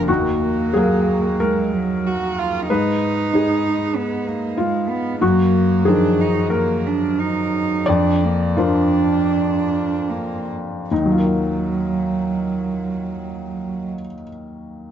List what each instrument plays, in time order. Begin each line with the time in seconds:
Already playing: felt piano D3 F3 D4 F4 A#4
0.08 felt piano D#2 F#4, cello A#3
0.73 felt piano F#3 G#4 A#4 F5
1.40 cello G#3, felt piano A#4
1.74 cello F#3
2.07 cello F#4
2.38 cello F4
2.69 felt piano G#2 B4, cello D#4
3.33 felt piano G#3 D#4 G#4
3.96 cello B3
4.28 cello A#3
4.57 cello G#3, felt piano F4
4.90 cello B3
5.21 felt piano F#2 F#4, cello A#3
5.85 felt piano D#3 F3 G#4 A#4, cello D4
6.21 cello D#4
6.50 cello A#3, felt piano A#4
6.87 cello D4
7.19 cello D#4
7.86 felt piano F2 D5, cello D4
8.24 cello A#3
8.57 felt piano F3 D4 F4 A#4, cello D4
10.09 cello A#3
10.90 felt piano D#2 D#4, cello F#3
10.98 felt piano D#3
11.06 felt piano F#3
11.12 felt piano F4
11.19 felt piano A#4